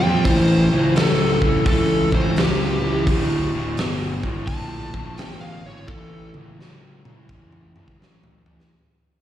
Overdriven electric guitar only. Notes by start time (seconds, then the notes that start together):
0.02 A#2 F3
0.25 A2 E3
0.72 A2 E3
0.95 A2 F#3
1.42 A2 E3
1.67 A2 E3
2.13 A2 E3
2.37 A2 F#3
2.83 A2 E3
3.07 D2 A2
3.54 D2 A2
3.79 D2 B2
4.24 D2 A2
4.49 D2 A2
4.94 D2 A2
5.19 D2 B2
5.65 D2 A2
5.89 A2 E3
6.36 A2 E3
6.60 A2 F#3
7.05 A2 E3
7.30 A2 E3
7.76 A2 E3
7.99 A2 F#3
8.47 A2 E3